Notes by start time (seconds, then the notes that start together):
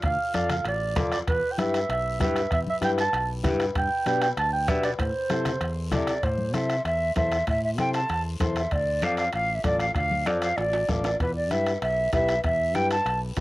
0.02 D2 F5, bombo low, bombo rim, high timbale, long guiro
0.34 F2 F4 A4 D5 F5, bombo rim, high conga, high timbale, short guiro
0.49 F5, bombo rim, low conga, high timbale, short guiro
0.65 A1 D5, bombo rim, high timbale, long guiro
0.96 F2 F4 A4 D5, bombo low, bombo rim, high conga, low conga, high timbale, low timbale, short guiro
1.12 D5, bombo rim, high timbale, short guiro
1.27 E2 B4, bombo low, bombo rim, high timbale, long guiro
1.52 G5
1.58 G2 E4 G4 B4 E5, bombo rim, high conga, high timbale, short guiro
1.74 bombo rim, high timbale, short guiro
1.89 B1 E5, bombo rim, high timbale, long guiro
2.20 G2 E4 G4 B4 E5, bombo low, bombo rim, high conga, high timbale, short guiro
2.36 bombo rim, high timbale, short guiro
2.51 E2 E5, bombo low, bombo rim, high timbale, long guiro
2.67 E5, high conga
2.81 G2 E4 G4 B4 G5, bombo rim, high conga, high timbale, short guiro
2.98 A5, bombo rim, high timbale, short guiro
3.13 B1, bombo rim, high timbale, long guiro
3.44 G2 E4 G4 B4, bombo low, bombo rim, high conga, low conga, high timbale, low timbale, short guiro
3.60 bombo rim, high timbale, short guiro
3.75 G2 G5, bombo low, bombo rim, high timbale, long guiro
4.06 B2 D4 G4 B4 G5, bombo rim, high conga, high timbale, short guiro
4.22 G5, bombo rim, high timbale, short guiro
4.37 D2 A5, bombo rim, high timbale, long guiro
4.53 G5
4.68 B2 D4 G4 B4 E5, bombo low, bombo rim, high conga, high timbale, low timbale, short guiro
4.83 D5, bombo rim, high timbale, short guiro
4.98 A2 C5, bombo low, bombo rim, high timbale, long guiro
5.30 C3 E4 A4 C5, bombo rim, high conga, high timbale, short guiro
5.45 bombo rim, low conga, high timbale, short guiro
5.61 E2, bombo rim, high timbale, long guiro
5.92 C3 E4 A4 D5, bombo low, bombo rim, high conga, low conga, high timbale, short guiro
6.07 D5, bombo rim, high timbale, short guiro
6.23 A2 C5, bombo low, bombo rim, high timbale, long guiro
6.38 high conga
6.53 C3 E4 A4 C5 E5, bombo rim, high conga, high timbale, short guiro
6.70 bombo rim, high timbale, short guiro
6.85 E2 E5, bombo rim, high timbale, long guiro
7.16 E2 E4 A4 C5 E5, bombo low, bombo rim, high conga, high timbale, low timbale, short guiro
7.32 bombo rim, high timbale, short guiro
7.47 A2 E5, bombo low, bombo rim, high timbale, long guiro
7.65 E5
7.78 C3 E4 A4 C5 G5, bombo rim, high conga, high timbale, short guiro
7.93 A5, bombo rim, high timbale, short guiro
8.09 E2, bombo rim, high timbale, long guiro
8.40 E2 E4 A4 C5, bombo low, bombo rim, high conga, high timbale, low timbale, short guiro
8.56 E5, bombo rim, high timbale, short guiro
8.71 D2 D5, bombo low, bombo rim, high timbale, long guiro
9.02 F2 F4 A4 D5 F5, bombo rim, high conga, high timbale, short guiro
9.17 F5, bombo rim, high timbale, short guiro
9.33 A1 F5, bombo rim, high timbale, long guiro
9.55 E5
9.64 A1 F4 A4 D5, bombo low, bombo rim, high conga, high timbale, short guiro
9.79 F5, bombo rim, high timbale, short guiro
9.95 D2 F5, bombo low, bombo rim, high timbale, long guiro
10.11 high conga
10.26 F2 F4 A4 D5, bombo rim, high conga, high timbale, short guiro
10.42 F5, bombo rim, high timbale, short guiro
10.57 A1 D5, bombo rim, high timbale, long guiro
10.73 high timbale
10.89 A1 F4 A4 D5, bombo low, bombo rim, high conga, low timbale, short guiro
11.04 D5, bombo rim, low timbale, short guiro
11.20 E2 B4, bombo low, bombo rim, high timbale, long guiro
11.36 D5
11.50 G2 E4 G4 B4 E5, bombo rim, high conga, high timbale, short guiro
11.66 bombo rim, high timbale, short guiro
11.82 B1 E5, bombo rim, high timbale, long guiro
12.13 B1 E4 G4 B4 E5, bombo low, bombo rim, high conga, high timbale, low timbale, short guiro
12.29 bombo rim, high timbale, short guiro
12.44 E2 E5, bombo low, bombo rim, high timbale, long guiro
12.75 G2 E4 G4 B4 G5, bombo rim, high conga, high timbale, short guiro
12.90 A5, bombo rim, high timbale, short guiro
13.05 B1, bombo rim, high timbale, long guiro
13.37 B1, bombo low, bombo rim, high timbale, low timbale